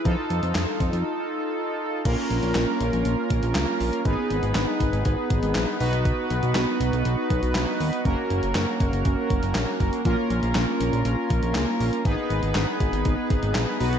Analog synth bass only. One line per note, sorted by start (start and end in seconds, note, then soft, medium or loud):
0.05 0.16 F2 loud
0.30 0.41 F2 loud
0.43 0.54 F2 medium
0.55 0.66 F2 loud
0.80 0.91 F2 loud
0.93 1.04 F2 medium
2.05 2.16 A#1 loud
2.30 2.41 A#1 loud
2.43 2.54 A#1 medium
2.55 2.66 A#1 loud
2.80 2.91 A#1 loud
2.93 3.04 A#1 loud
3.05 3.16 A#1 loud
3.30 3.41 A#1 loud
3.43 3.54 A#1 loud
3.56 3.66 C#2 loud
3.80 3.91 A#1 medium
4.05 4.16 G#1 loud
4.30 4.41 G#1 loud
4.43 4.54 G#1 loud
4.55 4.66 G#1 loud
4.80 4.91 G#1 medium
4.93 5.04 G#1 loud
5.06 5.16 G#1 loud
5.30 5.41 G#1 loud
5.43 5.54 G#1 loud
5.55 5.66 A#1 loud
5.80 6.13 B1 loud
6.30 6.41 B1 medium
6.43 6.54 B1 loud
6.55 6.66 B1 loud
6.80 6.91 B1 loud
6.93 7.04 B1 loud
7.05 7.16 B1 loud
7.30 7.41 B1 loud
7.43 7.54 B1 loud
7.55 7.66 B1 loud
7.80 7.91 D#2 medium
8.05 8.16 F#1 loud
8.30 8.41 F#1 loud
8.43 8.54 F#1 loud
8.55 8.66 F#1 loud
8.80 8.91 F#1 loud
8.93 9.04 F#1 medium
9.06 9.16 F#1 loud
9.30 9.41 F#1 medium
9.43 9.54 F#1 loud
9.55 9.66 A#1 medium
9.80 9.91 F#1 medium
10.05 10.16 A#1 loud
10.30 10.41 A#1 loud
10.43 10.54 A#1 medium
10.55 10.66 A#1 loud
10.80 10.91 A#1 loud
10.93 11.04 A#1 loud
11.05 11.16 A#1 loud
11.30 11.41 A#1 loud
11.43 11.54 A#1 loud
11.55 11.66 C#2 loud
11.80 11.91 A#1 medium
12.05 12.16 G#1 loud
12.30 12.41 G#1 loud
12.43 12.54 G#1 loud
12.55 12.66 G#1 loud
12.80 12.91 G#1 loud
12.93 13.04 G#1 medium
13.06 13.16 G#1 loud
13.30 13.41 G#1 loud
13.43 13.54 G#1 loud
13.55 13.66 A#1 loud
13.80 13.99 B1 loud